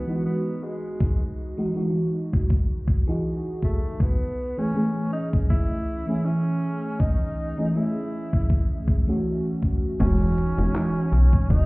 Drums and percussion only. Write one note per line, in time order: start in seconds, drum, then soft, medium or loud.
1.00 kick loud
2.33 kick medium
2.50 kick loud
2.88 kick medium
3.63 kick medium
4.00 kick loud
5.33 kick medium
5.50 kick loud
7.00 kick loud
8.33 kick medium
8.50 kick loud
8.88 kick medium
9.63 kick medium
10.00 kick loud
10.00 closed hi-hat medium
10.00 crash loud
10.21 closed hi-hat soft
10.38 closed hi-hat medium
10.59 closed hi-hat medium
10.75 clap loud
10.75 closed hi-hat medium
10.96 closed hi-hat soft
11.13 closed hi-hat medium
11.33 kick loud
11.33 closed hi-hat medium
11.50 kick loud
11.50 closed hi-hat medium